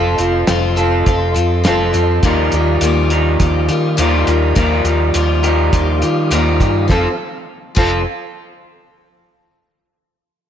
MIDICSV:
0, 0, Header, 1, 6, 480
1, 0, Start_track
1, 0, Tempo, 582524
1, 1842, Time_signature, 4, 2, 24, 8
1, 8650, End_track
2, 0, Start_track
2, 0, Title_t, "Tonewheel organ"
2, 0, Program_c, 0, 16
2, 0, Note_on_c, 0, 69, 72
2, 0, Note_on_c, 0, 75, 62
2, 0, Note_on_c, 0, 84, 75
2, 1798, Note_off_c, 0, 84, 0
2, 1802, Note_off_c, 0, 69, 0
2, 1824, Note_off_c, 0, 75, 0
2, 1850, Note_on_c, 0, 87, 72
2, 1851, Note_on_c, 0, 77, 60
2, 1855, Note_on_c, 0, 67, 68
2, 5654, Note_off_c, 0, 87, 0
2, 5655, Note_off_c, 0, 77, 0
2, 5657, Note_off_c, 0, 67, 0
2, 5690, Note_on_c, 0, 60, 65
2, 5691, Note_on_c, 0, 69, 57
2, 5698, Note_on_c, 0, 77, 78
2, 5910, Note_off_c, 0, 60, 0
2, 5910, Note_off_c, 0, 69, 0
2, 5914, Note_off_c, 0, 77, 0
2, 8650, End_track
3, 0, Start_track
3, 0, Title_t, "Steel-string acoustic guitar"
3, 0, Program_c, 1, 25
3, 0, Note_on_c, 1, 53, 83
3, 0, Note_on_c, 1, 60, 88
3, 0, Note_on_c, 1, 65, 80
3, 0, Note_on_c, 1, 69, 99
3, 136, Note_off_c, 1, 69, 0
3, 146, Note_on_c, 1, 69, 58
3, 152, Note_off_c, 1, 65, 0
3, 153, Note_off_c, 1, 53, 0
3, 155, Note_off_c, 1, 60, 0
3, 162, Note_on_c, 1, 65, 59
3, 171, Note_on_c, 1, 60, 50
3, 387, Note_off_c, 1, 60, 0
3, 389, Note_on_c, 1, 53, 89
3, 391, Note_off_c, 1, 65, 0
3, 392, Note_off_c, 1, 69, 0
3, 397, Note_on_c, 1, 60, 85
3, 401, Note_on_c, 1, 65, 98
3, 403, Note_on_c, 1, 69, 93
3, 618, Note_off_c, 1, 69, 0
3, 627, Note_on_c, 1, 69, 61
3, 632, Note_off_c, 1, 65, 0
3, 634, Note_off_c, 1, 53, 0
3, 638, Note_off_c, 1, 60, 0
3, 642, Note_on_c, 1, 65, 52
3, 650, Note_on_c, 1, 60, 51
3, 872, Note_off_c, 1, 60, 0
3, 874, Note_off_c, 1, 69, 0
3, 874, Note_on_c, 1, 53, 62
3, 881, Note_off_c, 1, 65, 0
3, 882, Note_on_c, 1, 60, 76
3, 889, Note_on_c, 1, 65, 62
3, 895, Note_on_c, 1, 69, 79
3, 1097, Note_off_c, 1, 69, 0
3, 1107, Note_on_c, 1, 69, 61
3, 1109, Note_off_c, 1, 65, 0
3, 1117, Note_off_c, 1, 53, 0
3, 1119, Note_on_c, 1, 65, 56
3, 1121, Note_off_c, 1, 60, 0
3, 1130, Note_on_c, 1, 60, 50
3, 1347, Note_off_c, 1, 60, 0
3, 1348, Note_on_c, 1, 53, 91
3, 1350, Note_off_c, 1, 65, 0
3, 1354, Note_off_c, 1, 69, 0
3, 1357, Note_on_c, 1, 60, 100
3, 1360, Note_on_c, 1, 65, 93
3, 1365, Note_on_c, 1, 69, 94
3, 1580, Note_off_c, 1, 69, 0
3, 1589, Note_on_c, 1, 69, 55
3, 1591, Note_off_c, 1, 65, 0
3, 1595, Note_off_c, 1, 53, 0
3, 1599, Note_off_c, 1, 60, 0
3, 1601, Note_on_c, 1, 65, 48
3, 1615, Note_on_c, 1, 60, 53
3, 1836, Note_off_c, 1, 69, 0
3, 1839, Note_off_c, 1, 65, 0
3, 1839, Note_on_c, 1, 51, 85
3, 1844, Note_on_c, 1, 53, 85
3, 1845, Note_off_c, 1, 60, 0
3, 1848, Note_on_c, 1, 58, 97
3, 1849, Note_on_c, 1, 65, 89
3, 1855, Note_on_c, 1, 67, 89
3, 2072, Note_off_c, 1, 67, 0
3, 2080, Note_off_c, 1, 51, 0
3, 2082, Note_on_c, 1, 67, 69
3, 2083, Note_off_c, 1, 53, 0
3, 2084, Note_off_c, 1, 65, 0
3, 2085, Note_off_c, 1, 58, 0
3, 2094, Note_on_c, 1, 65, 58
3, 2105, Note_on_c, 1, 58, 54
3, 2322, Note_off_c, 1, 67, 0
3, 2324, Note_off_c, 1, 58, 0
3, 2325, Note_on_c, 1, 51, 76
3, 2326, Note_off_c, 1, 65, 0
3, 2331, Note_on_c, 1, 53, 81
3, 2334, Note_on_c, 1, 58, 93
3, 2336, Note_on_c, 1, 65, 97
3, 2337, Note_on_c, 1, 67, 93
3, 2549, Note_off_c, 1, 67, 0
3, 2559, Note_on_c, 1, 67, 61
3, 2561, Note_off_c, 1, 65, 0
3, 2564, Note_off_c, 1, 51, 0
3, 2567, Note_off_c, 1, 53, 0
3, 2568, Note_off_c, 1, 58, 0
3, 2578, Note_on_c, 1, 58, 49
3, 2797, Note_off_c, 1, 58, 0
3, 2797, Note_on_c, 1, 53, 63
3, 2801, Note_off_c, 1, 67, 0
3, 2807, Note_on_c, 1, 58, 64
3, 2812, Note_on_c, 1, 65, 69
3, 2818, Note_on_c, 1, 67, 71
3, 3028, Note_off_c, 1, 67, 0
3, 3037, Note_off_c, 1, 65, 0
3, 3038, Note_on_c, 1, 67, 62
3, 3040, Note_off_c, 1, 53, 0
3, 3045, Note_off_c, 1, 58, 0
3, 3047, Note_on_c, 1, 65, 57
3, 3061, Note_on_c, 1, 58, 51
3, 3270, Note_off_c, 1, 58, 0
3, 3271, Note_on_c, 1, 51, 90
3, 3273, Note_off_c, 1, 65, 0
3, 3276, Note_off_c, 1, 67, 0
3, 3278, Note_on_c, 1, 53, 102
3, 3280, Note_on_c, 1, 58, 93
3, 3283, Note_on_c, 1, 65, 94
3, 3286, Note_on_c, 1, 67, 93
3, 3508, Note_off_c, 1, 67, 0
3, 3517, Note_off_c, 1, 51, 0
3, 3517, Note_off_c, 1, 65, 0
3, 3517, Note_on_c, 1, 67, 62
3, 3521, Note_off_c, 1, 53, 0
3, 3522, Note_off_c, 1, 58, 0
3, 3527, Note_on_c, 1, 65, 55
3, 3543, Note_on_c, 1, 58, 50
3, 3748, Note_off_c, 1, 58, 0
3, 3751, Note_on_c, 1, 51, 82
3, 3754, Note_off_c, 1, 65, 0
3, 3755, Note_on_c, 1, 53, 96
3, 3756, Note_off_c, 1, 67, 0
3, 3758, Note_on_c, 1, 58, 82
3, 3763, Note_on_c, 1, 65, 93
3, 3766, Note_on_c, 1, 67, 93
3, 3982, Note_off_c, 1, 67, 0
3, 3992, Note_on_c, 1, 67, 61
3, 3993, Note_off_c, 1, 65, 0
3, 3997, Note_off_c, 1, 51, 0
3, 3999, Note_off_c, 1, 53, 0
3, 4001, Note_off_c, 1, 58, 0
3, 4003, Note_on_c, 1, 65, 58
3, 4015, Note_on_c, 1, 58, 51
3, 4234, Note_off_c, 1, 58, 0
3, 4238, Note_off_c, 1, 65, 0
3, 4238, Note_off_c, 1, 67, 0
3, 4239, Note_on_c, 1, 51, 84
3, 4241, Note_on_c, 1, 53, 84
3, 4244, Note_on_c, 1, 58, 90
3, 4248, Note_on_c, 1, 65, 94
3, 4253, Note_on_c, 1, 67, 83
3, 4464, Note_off_c, 1, 67, 0
3, 4474, Note_on_c, 1, 67, 61
3, 4477, Note_off_c, 1, 65, 0
3, 4481, Note_off_c, 1, 51, 0
3, 4482, Note_off_c, 1, 53, 0
3, 4484, Note_off_c, 1, 58, 0
3, 4487, Note_on_c, 1, 65, 59
3, 4498, Note_on_c, 1, 58, 50
3, 4712, Note_off_c, 1, 58, 0
3, 4717, Note_on_c, 1, 53, 64
3, 4719, Note_off_c, 1, 67, 0
3, 4721, Note_off_c, 1, 65, 0
3, 4722, Note_on_c, 1, 58, 75
3, 4731, Note_on_c, 1, 65, 68
3, 4739, Note_on_c, 1, 67, 67
3, 4947, Note_off_c, 1, 67, 0
3, 4957, Note_on_c, 1, 67, 62
3, 4958, Note_off_c, 1, 65, 0
3, 4960, Note_off_c, 1, 53, 0
3, 4963, Note_off_c, 1, 58, 0
3, 4968, Note_on_c, 1, 65, 57
3, 4977, Note_on_c, 1, 58, 52
3, 5195, Note_off_c, 1, 58, 0
3, 5196, Note_on_c, 1, 51, 81
3, 5200, Note_off_c, 1, 67, 0
3, 5201, Note_off_c, 1, 65, 0
3, 5202, Note_on_c, 1, 53, 91
3, 5205, Note_on_c, 1, 58, 91
3, 5210, Note_on_c, 1, 65, 104
3, 5212, Note_on_c, 1, 67, 103
3, 5428, Note_off_c, 1, 67, 0
3, 5437, Note_on_c, 1, 67, 57
3, 5439, Note_off_c, 1, 51, 0
3, 5440, Note_off_c, 1, 65, 0
3, 5443, Note_off_c, 1, 53, 0
3, 5444, Note_off_c, 1, 58, 0
3, 5450, Note_on_c, 1, 65, 50
3, 5457, Note_on_c, 1, 58, 45
3, 5666, Note_on_c, 1, 53, 76
3, 5671, Note_off_c, 1, 58, 0
3, 5672, Note_off_c, 1, 65, 0
3, 5675, Note_on_c, 1, 60, 68
3, 5680, Note_off_c, 1, 67, 0
3, 5682, Note_on_c, 1, 65, 82
3, 5688, Note_on_c, 1, 69, 82
3, 5818, Note_off_c, 1, 53, 0
3, 5822, Note_off_c, 1, 60, 0
3, 5826, Note_off_c, 1, 65, 0
3, 5829, Note_off_c, 1, 69, 0
3, 6384, Note_on_c, 1, 53, 82
3, 6394, Note_on_c, 1, 60, 82
3, 6400, Note_on_c, 1, 65, 82
3, 6406, Note_on_c, 1, 69, 89
3, 6585, Note_off_c, 1, 53, 0
3, 6590, Note_off_c, 1, 60, 0
3, 6593, Note_off_c, 1, 65, 0
3, 6596, Note_off_c, 1, 69, 0
3, 8650, End_track
4, 0, Start_track
4, 0, Title_t, "Clean electric guitar"
4, 0, Program_c, 2, 27
4, 666, Note_on_c, 2, 53, 72
4, 1355, Note_off_c, 2, 53, 0
4, 1856, Note_on_c, 2, 55, 99
4, 1862, Note_on_c, 2, 63, 104
4, 1868, Note_on_c, 2, 70, 102
4, 2559, Note_off_c, 2, 70, 0
4, 2563, Note_on_c, 2, 70, 92
4, 2566, Note_off_c, 2, 63, 0
4, 2569, Note_on_c, 2, 63, 85
4, 2574, Note_off_c, 2, 55, 0
4, 2577, Note_on_c, 2, 55, 75
4, 2585, Note_on_c, 2, 53, 74
4, 2590, Note_on_c, 2, 51, 70
4, 3265, Note_off_c, 2, 51, 0
4, 3269, Note_off_c, 2, 70, 0
4, 3272, Note_off_c, 2, 63, 0
4, 3276, Note_off_c, 2, 55, 0
4, 3285, Note_off_c, 2, 53, 0
4, 3293, Note_on_c, 2, 55, 95
4, 3302, Note_on_c, 2, 63, 87
4, 3307, Note_on_c, 2, 70, 101
4, 3754, Note_off_c, 2, 55, 0
4, 3758, Note_off_c, 2, 63, 0
4, 3761, Note_off_c, 2, 70, 0
4, 3767, Note_on_c, 2, 55, 99
4, 3775, Note_on_c, 2, 63, 92
4, 3780, Note_on_c, 2, 70, 113
4, 4464, Note_off_c, 2, 70, 0
4, 4470, Note_off_c, 2, 63, 0
4, 4471, Note_off_c, 2, 55, 0
4, 4473, Note_on_c, 2, 70, 95
4, 4480, Note_on_c, 2, 63, 84
4, 4490, Note_on_c, 2, 55, 76
4, 4495, Note_on_c, 2, 53, 75
4, 4500, Note_on_c, 2, 51, 67
4, 5184, Note_off_c, 2, 70, 0
4, 5186, Note_off_c, 2, 51, 0
4, 5187, Note_off_c, 2, 63, 0
4, 5192, Note_off_c, 2, 55, 0
4, 5195, Note_off_c, 2, 53, 0
4, 5216, Note_on_c, 2, 55, 88
4, 5223, Note_on_c, 2, 63, 85
4, 5228, Note_on_c, 2, 70, 87
4, 5675, Note_off_c, 2, 55, 0
4, 5678, Note_off_c, 2, 63, 0
4, 5681, Note_off_c, 2, 70, 0
4, 8650, End_track
5, 0, Start_track
5, 0, Title_t, "Fingered electric bass"
5, 0, Program_c, 3, 33
5, 0, Note_on_c, 3, 29, 94
5, 146, Note_off_c, 3, 29, 0
5, 150, Note_on_c, 3, 29, 85
5, 384, Note_off_c, 3, 29, 0
5, 390, Note_on_c, 3, 29, 90
5, 854, Note_off_c, 3, 29, 0
5, 879, Note_on_c, 3, 29, 94
5, 1109, Note_off_c, 3, 29, 0
5, 1118, Note_on_c, 3, 41, 89
5, 1349, Note_off_c, 3, 41, 0
5, 1354, Note_on_c, 3, 29, 84
5, 1587, Note_off_c, 3, 29, 0
5, 1597, Note_on_c, 3, 41, 82
5, 1829, Note_off_c, 3, 41, 0
5, 1841, Note_on_c, 3, 39, 94
5, 2071, Note_off_c, 3, 39, 0
5, 2082, Note_on_c, 3, 39, 84
5, 2312, Note_off_c, 3, 39, 0
5, 2316, Note_on_c, 3, 39, 95
5, 2779, Note_off_c, 3, 39, 0
5, 2802, Note_on_c, 3, 39, 85
5, 3032, Note_off_c, 3, 39, 0
5, 3042, Note_on_c, 3, 51, 91
5, 3272, Note_off_c, 3, 51, 0
5, 3281, Note_on_c, 3, 39, 96
5, 3512, Note_off_c, 3, 39, 0
5, 3521, Note_on_c, 3, 39, 79
5, 3752, Note_off_c, 3, 39, 0
5, 3761, Note_on_c, 3, 39, 97
5, 3985, Note_off_c, 3, 39, 0
5, 3990, Note_on_c, 3, 39, 94
5, 4226, Note_off_c, 3, 39, 0
5, 4241, Note_on_c, 3, 39, 90
5, 4701, Note_off_c, 3, 39, 0
5, 4724, Note_on_c, 3, 39, 98
5, 4953, Note_off_c, 3, 39, 0
5, 4969, Note_on_c, 3, 51, 87
5, 5196, Note_off_c, 3, 51, 0
5, 5200, Note_on_c, 3, 39, 90
5, 5431, Note_off_c, 3, 39, 0
5, 5441, Note_on_c, 3, 43, 92
5, 5671, Note_off_c, 3, 43, 0
5, 5682, Note_on_c, 3, 29, 94
5, 5816, Note_off_c, 3, 29, 0
5, 6401, Note_on_c, 3, 29, 93
5, 6624, Note_off_c, 3, 29, 0
5, 8650, End_track
6, 0, Start_track
6, 0, Title_t, "Drums"
6, 152, Note_on_c, 9, 42, 69
6, 234, Note_off_c, 9, 42, 0
6, 391, Note_on_c, 9, 42, 88
6, 392, Note_on_c, 9, 38, 112
6, 473, Note_off_c, 9, 42, 0
6, 474, Note_off_c, 9, 38, 0
6, 635, Note_on_c, 9, 42, 57
6, 718, Note_off_c, 9, 42, 0
6, 877, Note_on_c, 9, 42, 82
6, 879, Note_on_c, 9, 36, 86
6, 960, Note_off_c, 9, 42, 0
6, 961, Note_off_c, 9, 36, 0
6, 1118, Note_on_c, 9, 42, 65
6, 1201, Note_off_c, 9, 42, 0
6, 1358, Note_on_c, 9, 42, 98
6, 1359, Note_on_c, 9, 38, 116
6, 1440, Note_off_c, 9, 42, 0
6, 1441, Note_off_c, 9, 38, 0
6, 1598, Note_on_c, 9, 42, 63
6, 1680, Note_off_c, 9, 42, 0
6, 1836, Note_on_c, 9, 42, 85
6, 1839, Note_on_c, 9, 36, 97
6, 1918, Note_off_c, 9, 42, 0
6, 1922, Note_off_c, 9, 36, 0
6, 2075, Note_on_c, 9, 42, 69
6, 2157, Note_off_c, 9, 42, 0
6, 2316, Note_on_c, 9, 42, 96
6, 2398, Note_off_c, 9, 42, 0
6, 2556, Note_on_c, 9, 42, 74
6, 2639, Note_off_c, 9, 42, 0
6, 2799, Note_on_c, 9, 42, 100
6, 2802, Note_on_c, 9, 36, 80
6, 2881, Note_off_c, 9, 42, 0
6, 2884, Note_off_c, 9, 36, 0
6, 3037, Note_on_c, 9, 42, 74
6, 3120, Note_off_c, 9, 42, 0
6, 3280, Note_on_c, 9, 42, 91
6, 3362, Note_off_c, 9, 42, 0
6, 3520, Note_on_c, 9, 42, 72
6, 3602, Note_off_c, 9, 42, 0
6, 3759, Note_on_c, 9, 42, 84
6, 3761, Note_on_c, 9, 36, 112
6, 3841, Note_off_c, 9, 42, 0
6, 3844, Note_off_c, 9, 36, 0
6, 3996, Note_on_c, 9, 42, 69
6, 4079, Note_off_c, 9, 42, 0
6, 4236, Note_on_c, 9, 42, 87
6, 4318, Note_off_c, 9, 42, 0
6, 4480, Note_on_c, 9, 42, 59
6, 4563, Note_off_c, 9, 42, 0
6, 4720, Note_on_c, 9, 42, 88
6, 4721, Note_on_c, 9, 36, 85
6, 4803, Note_off_c, 9, 42, 0
6, 4804, Note_off_c, 9, 36, 0
6, 4960, Note_on_c, 9, 42, 62
6, 5042, Note_off_c, 9, 42, 0
6, 5202, Note_on_c, 9, 42, 92
6, 5285, Note_off_c, 9, 42, 0
6, 5442, Note_on_c, 9, 36, 80
6, 5443, Note_on_c, 9, 42, 64
6, 5525, Note_off_c, 9, 36, 0
6, 5526, Note_off_c, 9, 42, 0
6, 5682, Note_on_c, 9, 36, 97
6, 5683, Note_on_c, 9, 38, 83
6, 5765, Note_off_c, 9, 36, 0
6, 5766, Note_off_c, 9, 38, 0
6, 6397, Note_on_c, 9, 49, 84
6, 6402, Note_on_c, 9, 36, 98
6, 6479, Note_off_c, 9, 49, 0
6, 6484, Note_off_c, 9, 36, 0
6, 8650, End_track
0, 0, End_of_file